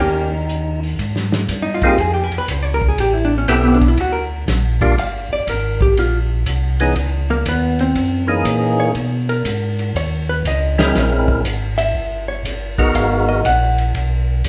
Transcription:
Already playing: D#4
0.00 D#2 D#3 A#3 C#4 G4
0.49 closed hi-hat
0.83 open hi-hat
0.99 G#2, kick, ride
1.16 snare
1.32 snare
1.48 G2, kick, hi-hat pedal, ride
1.62 D#4
1.74 F4
1.82 A#3 C4 D#4 F4 G#4, kick, ride
1.88 G4
1.98 F2 G#4, kick, ride
2.14 G4
2.24 A#4
2.31 F2, ride
2.38 B4
2.48 C#2 C5, kick, hi-hat pedal, ride
2.63 C#5
2.74 A#4
2.82 kick
2.89 G#4
2.97 A1 G4, kick, ride
3.13 E4
3.25 D4
3.38 C#4
3.47 B1 B3 C4 E4 G4 A4, kick, hi-hat pedal, ride
3.63 B3
3.74 D4
3.81 kick, ride
3.88 E4
3.97 D2 F#4, kick, ride
4.13 A#4
4.47 A#1, kick, snare, hi-hat pedal, ride
4.81 G3 A#3 D4 F4 G4, kick, ride
4.97 G1 F5, kick, ride
5.31 G1 D5
5.47 G#1 A#4, kick, hi-hat pedal, ride
5.81 G4, kick
5.97 A#1 F4, kick, ride
6.46 C2, kick, hi-hat pedal, ride
6.80 E3 B3 C#4 D#4 G#4, ride
6.96 C#2, kick, ride
7.30 A#3 A#4
7.46 D#2 B3 B4, kick, hi-hat pedal, ride
7.79 C4 C5, ride
7.95 F#2, kick, ride
8.27 E3 A#3 C#4 D#4 G#4
8.44 A#2, kick, hi-hat pedal, ride
8.80 C#5
8.94 B2, kick, ride
9.29 A#4, ride
9.44 G#2, kick, hi-hat pedal, ride
9.79 ride
9.94 D#2 C#5, kick, ride
10.29 B4
10.44 C#2 D#5, kick, hi-hat pedal, ride
10.78 G#3 C4 C#4 E4 A#4, snare, ride
10.94 A#1, kick, snare, ride
11.28 kick
11.44 G#1, kick, hi-hat pedal, ride
11.78 E5, ride
11.95 G1, kick
12.28 C#5
12.45 G1, kick, hi-hat pedal, ride
12.78 G#3 B3 D#4 F#4 A#4, kick, ride
12.94 G#1 F5, kick, ride
13.29 D#5
13.44 A#1 F#5, kick, hi-hat pedal, ride
13.78 ride
13.94 B1, kick, ride
14.44 D#2, kick, hi-hat pedal, ride

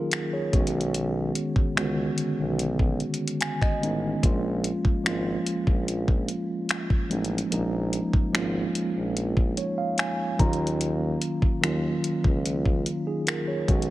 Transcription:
Already playing: D#3 F#3 A#3 C#4 D#4 F4 G#4 A#4
0.11 finger snap, closed hi-hat
0.33 G#4 C#5
0.52 B1 D3 G#3 B3 C#4 F#4, kick, closed hi-hat
0.59 D#3
0.67 closed hi-hat
0.81 closed hi-hat
0.94 closed hi-hat
1.35 closed hi-hat
1.56 C#2, kick
1.76 C#2 D3 G#3 B3 C#4 F#4, finger snap, closed hi-hat
1.82 D#3
2.18 closed hi-hat
2.39 B1
2.59 closed hi-hat
2.79 kick
3.00 closed hi-hat
3.14 closed hi-hat
3.28 closed hi-hat
3.41 G#5, finger snap, closed hi-hat
3.62 D#5, finger snap, kick
3.81 A1 D#3 G#3 B3 C#4 D#4, closed hi-hat
4.22 A#1 F3 G#3 A#3 C#4 F4, kick, closed hi-hat
4.64 closed hi-hat
4.85 G#1, kick
5.04 G#1 F3 G#3 A#3 C#4 F4, finger snap, closed hi-hat
5.46 closed hi-hat
5.67 A#1, kick
5.88 closed hi-hat
6.08 kick
6.28 closed hi-hat
6.69 finger snap, closed hi-hat
6.90 kick
7.09 A1 F3 G#3 A#3 C#4 D#4, closed hi-hat
7.25 closed hi-hat
7.38 closed hi-hat
7.51 A#1 F3 G#3 A#3 C#4 D#4, closed hi-hat
7.93 closed hi-hat
8.13 G#1, kick
8.33 G#1 F3 G#3 A#3 C#4 F4, finger snap, closed hi-hat
8.75 closed hi-hat
8.96 A#1
9.17 closed hi-hat
9.37 kick
9.57 C#5, closed hi-hat
9.78 F5
9.98 G#5, finger snap, closed hi-hat
10.38 D#2 D#3 F#3 A#3 C#4 F4 A#5, kick, closed hi-hat
10.53 closed hi-hat
10.67 closed hi-hat
10.81 closed hi-hat
11.21 closed hi-hat
11.42 D#2, kick
11.61 D#2 D#3 F#3 A#3 C#4 F4, finger snap, closed hi-hat
12.04 closed hi-hat
12.24 C#2, kick
12.46 closed hi-hat
12.65 kick
12.86 closed hi-hat
13.07 D#4 G#4
13.27 F4 A#4, finger snap, closed hi-hat
13.48 G#4 C#5
13.67 B1 D#3 G#3 B3 C#4 F#4, kick, closed hi-hat
13.82 closed hi-hat

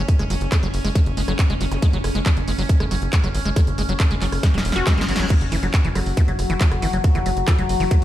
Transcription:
Already playing: C#4
0.08 kick, closed hi-hat
0.19 F#1 G#3, cross-stick, closed hi-hat
0.30 F#1 F#3, open hi-hat
0.41 F#1, closed hi-hat
0.52 G#3, kick, cross-stick, clap, closed hi-hat
0.63 F#1 F#3, closed hi-hat
0.74 F#1, open hi-hat
0.85 F#1 G#3, open hi-hat
0.95 F#3, kick, cross-stick, closed hi-hat
1.06 F#1, closed hi-hat
1.17 F#1 G#3, open hi-hat
1.28 F#1 F#3, cross-stick, closed hi-hat
1.39 kick, clap, closed hi-hat
1.50 F#1 G#3, closed hi-hat
1.61 F#1 F#3, open hi-hat
1.72 F#1, cross-stick, closed hi-hat, zap
1.82 G#3, kick, closed hi-hat
1.93 F#1 F#3, closed hi-hat
2.04 F#1, cross-stick, open hi-hat
2.15 F#1 G#3, closed hi-hat
2.26 F#3, kick, clap, closed hi-hat
2.37 F#1, closed hi-hat
2.48 F#1 G#3, open hi-hat
2.58 F#1 F#3, open hi-hat
2.69 kick, closed hi-hat
2.80 F#1 G#3, cross-stick, closed hi-hat
2.91 F#1 F#3, open hi-hat
3.02 F#1, closed hi-hat
3.13 G#3, kick, clap, closed hi-hat
3.24 F#1 F#3, cross-stick, closed hi-hat
3.35 G#1, open hi-hat
3.45 F#1 G#3, closed hi-hat
3.56 F#3, kick, cross-stick, closed hi-hat
3.67 F#1, closed hi-hat
3.78 F#1 G#3, open hi-hat
3.89 F#1 F#3, closed hi-hat
4.00 kick, cross-stick, clap, closed hi-hat
4.11 F#1 G#3, closed hi-hat
4.22 F#1 F#3, clap, open hi-hat
4.32 F#1, cross-stick, open hi-hat
4.43 G#3, kick, snare, closed hi-hat, reverse cymbal
4.54 E1 F#3, snare, closed hi-hat
4.65 E1, open hi-hat
4.72 E1 F#4, snare, closed hi-hat
4.87 G#3, kick, snare, clap, closed hi-hat
4.98 G#1 G#3, snare, closed hi-hat
5.08 G#1 F#3, open hi-hat
5.16 G#1 F#3, snare, closed hi-hat
5.30 F#3 F#4, kick, closed hi-hat, crash
5.41 F#1, closed hi-hat
5.52 F#1 E3, open hi-hat
5.63 F#1 F#3, cross-stick, closed hi-hat
5.74 kick, clap, closed hi-hat
5.85 F#1 E3, closed hi-hat
5.95 F#1 F#3, cross-stick, open hi-hat
6.06 F#1, open hi-hat
6.17 E3, kick, closed hi-hat
6.28 F#1 F#3, closed hi-hat
6.39 F#1, cross-stick, open hi-hat
6.50 F#1 E3, closed hi-hat
6.61 F#3, kick, clap, closed hi-hat
6.71 F#1, cross-stick, closed hi-hat
6.82 G#1 E3, open hi-hat
6.93 F#1 F#3, closed hi-hat
7.04 kick, closed hi-hat
7.15 F#1 E3, cross-stick, closed hi-hat
7.26 F#1 F#3, open hi-hat
7.37 F#1, closed hi-hat
7.48 E3, kick, cross-stick, clap, closed hi-hat
7.58 F#1 F#3, closed hi-hat
7.69 F#1, open hi-hat
7.80 F#1 E3, open hi-hat
7.91 F#3, kick, cross-stick, closed hi-hat

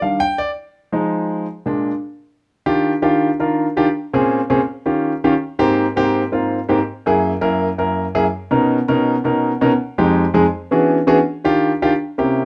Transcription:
0.01 D#3 G3 D4 F5
0.20 G5
0.38 D5
0.92 F3 G#3 D#4
1.66 A#2 G#3 D4
2.66 D#3 D4 F4 G4
3.02 D#3 D4 F4 G4
3.40 D#3 D4 F4 A#4
3.77 D#3 D4 F4 G4
4.14 A#2 C4 C#4 G#4
4.50 A#2 C4 C#4 G#4
4.86 D#3 C#4 F4 G4
5.24 D#3 C#4 F4 G4
5.59 G#2 A#3 C4 G4
5.96 G#2 A#3 C4 G4
6.32 G#2 A#3 C4 F4
6.69 G#2 A#3 C4 G4
7.06 F#2 A#3 E4 G#4
7.41 F#2 A#3 E4 A#4
7.78 F#2 A#3 E4 A#4
8.15 F#2 A#3 E4 G#4
8.51 B2 C#4 D#4 A#4
8.88 B2 C#4 D#4 A#4
9.24 B2 C#4 D#4 A#4
9.61 B2 C#4 D#4 A#4
9.98 F2 G#3 D#4 G4
10.34 F2 G#3 D#4 G#4
10.71 E3 B3 C#4 D4 F#4 G#4
11.07 E3 B3 C#4 D4 F#4 G#4
11.44 D#3 D4 F4 G4
11.82 D#3 D4 F4 G4
12.18 C3 A#3 C#4 E4 G4

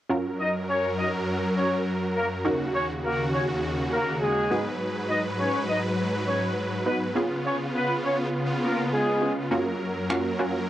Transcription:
0.10 F#2 F#3 C#4 F4 F#4 A#4
0.39 D#4 D#5
0.69 C#4 C#5
0.98 D#4 D#5
1.57 C#4 C#5
2.16 A#3 A#4
2.45 D#2 C#3 C#4 D#4 F#4 A#4
2.75 C#4 C#5
3.04 A#3 A#4
3.33 C#4 C#5
3.92 A#3 A#4
4.22 G#3 G#4
4.51 G#2 F#3 B3 D#4 F#4 G#4 B4
5.10 D#4 D#5
5.39 C#4 C#5
5.69 D#4 D#5
6.28 C#4 C#5
6.86 B3 D#4 F#4 B4
7.15 C#3 B3 C#4 F4 G#4
7.45 C#4 C#5
7.75 B3 B4
8.04 C#4 C#5
8.63 A#3 A#4
8.92 G#3 G#4
9.22 B3 C#4 F4 G#4
9.51 F#2 F#3 A#3 C#4 F4 F#4 A#4
10.10 A#3 C#4 F4 F#4, finger snap
10.39 A#3 C#4 F4 F#4

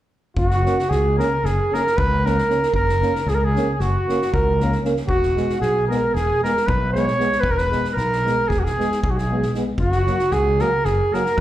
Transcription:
0.37 F#1 F#4, kick
0.51 snare
0.65 A#3 C#4, snare
0.79 snare
0.89 C#2 G#4, snare
1.18 A#3 C#4 A#4, snare
1.43 F#1 G#4, snare
1.71 A#3 C#4 A#4, snare
1.77 A#4
1.87 snare
1.97 C#2 B4, kick
2.25 A#3 C#4 A#4, snare
2.38 snare
2.49 A#3 C#4, snare
2.63 snare
2.73 F#1 A#4, kick
2.89 snare
3.02 A#3 C#4, snare
3.16 snare
3.26 C#2 G#4, snare
3.35 A#4
3.45 G#4
3.56 A#3 C#4, snare
3.73 G#4
3.80 F#1 F#4, snare
4.09 A#3 C#4, snare
4.22 snare
4.33 C#2 A#4, kick
4.60 A#3 C#4, snare
4.72 snare
4.84 A#3 C#4, snare
4.97 snare
5.07 E1 F#4, kick
5.23 snare
5.37 G#3 B3, snare
5.50 snare
5.61 B1 G#4, snare
5.88 G#3 B3 A#4, snare
6.14 E1 G#4, snare
6.43 G#3 B3 A#4, snare
6.57 snare
6.66 B1 B4, kick
6.93 G#3 B3 C#5, snare
7.08 snare
7.19 G#3 B3, snare
7.32 snare
7.39 E1 B4, kick
7.51 A#4
7.57 B4, snare
7.71 G#3 B3, snare
7.84 snare
7.90 A#4 B4
7.95 B1 A#4, snare
8.13 snare
8.26 G#3 B3, snare
8.48 E1 G#4, kick, snare
8.58 F#4
8.62 G#4, snare
8.78 G#3 B3, snare
8.92 snare
9.01 B1 G#4, kick
9.09 F#4
9.16 G#4, snare
9.31 G#3 B3
9.43 snare
9.54 G#3 B3, snare
9.78 F#1 F#4, kick
9.92 snare
10.07 F#3 A#3, snare
10.19 snare
10.31 C#2 G#4, snare
10.59 F#3 A#3 A#4, snare
10.85 F#1 G#4, snare
11.13 F#3 A#3 A#4, snare
11.26 snare
11.37 B4

